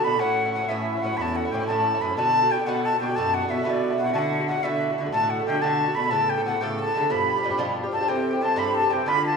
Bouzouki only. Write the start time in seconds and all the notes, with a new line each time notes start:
0.05 A2 D3 A3 F#4
0.12 D3 A3 F#4
0.19 A2 E3 C#4 E4
0.45 E3 C#4 E4
0.54 A2 E3 C#4 E4
0.62 E3 C#4 E4
0.69 A2 E3 C#4 E4
0.96 E3 C#4 E4
1.03 A2 E3 C#4 E4
1.12 E3 C#4 E4
1.19 A2 E3 C#4 E4
1.45 E3 C#4 E4
1.52 A2 E3 C#4 E4
1.60 E3 C#4 E4
1.69 A2 E3 C#4 E4
1.95 E3 C#4 E4
2.01 A2 E3 C#4 E4
2.09 E3 C#4 E4
2.17 B2 D3 B3 F#4
2.42 D3 B3 F#4
2.50 B2 D3 B3 F#4
2.58 D3 B3 F#4
2.66 B2 D3 B3 F#4
2.92 D3 B3 F#4
3.00 B2 D3 B3 F#4
3.08 D3 B3 F#4
3.16 B2 D3 B3 F#4
3.42 D3 B3 F#4
3.49 B2 D3 B3 F#4
3.57 D3 B3 F#4
3.64 B2 D3 B3 F#4
3.90 D3 B3 F#4
3.98 B2 D3 B3 F#4
4.06 D3 B3 F#4
4.13 B2 D3 A3 F#4
4.40 D3 A3 F#4
4.48 B2 D3 A3 F#4
4.55 D3 A3 F#4
4.63 B2 D3 A3 F#4
4.90 D3 A3 F#4
4.98 B2 D3 A3 F#4
5.05 D3 A3 F#4
5.12 B2 D3 A3 F#4
5.39 D3 A3 F#4
5.47 B2 D3 A3 F#4
5.54 D3 A3 F#4
5.62 B2 D3 A3 F#4
5.88 D3 A3 F#4
5.96 B2 D3 A3 F#4
6.04 D3 A3 F#4
6.11 C#3 B3 E4 A4
6.38 B3 E4 A4
6.46 C#3 B3 E4 A4
6.54 B3 E4 A4
6.61 C#3 B3 E4 A4
6.86 B3 E4 A4
6.95 C#3 B3 E4 A4
7.01 B3 E4 A4
7.09 B2 F3 D4 G4
7.35 F3 D4 G4
7.43 B2 F3 D4 G4
7.51 F3 D4 G4
7.58 B2 F3 D4 G4
7.83 F3 D4 G4
7.92 B2 F3 D4 G4
8.01 F3 D4 G4
8.08 G2 E3 C4 G4
8.16 E3 C4 G4
8.33 E3 C4 G4
8.41 G2 E3 C4 G4
8.56 G2 E3 C4 G4
8.65 E3 C4 G4
8.82 E3 C4 G4
8.90 G2 E3 C4 G4
9.06 A2 D3 A3 F4
9.15 D3 A3 F4
9.32 F4